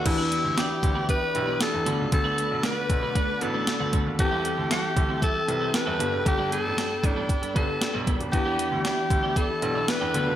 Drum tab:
CC |x---------------|----------------|----------------|----------------|
HH |x-x-x-x-x-x-x-x-|x-x-x-x-x-x-x-x-|x-x-x-x-x-x-x-x-|x-x-x-x-xxx-x-xx|
SD |----o-------o---|----o-------o---|----o-------o---|----o-------o---|
BD |o-----o-o-------|o-----o-o-----o-|o-----o-o-------|o-----o-o-o---o-|

CC |----------------|
HH |x-x-x-x-x-x-x-x-|
SD |----o-------o---|
BD |o-----o-o-------|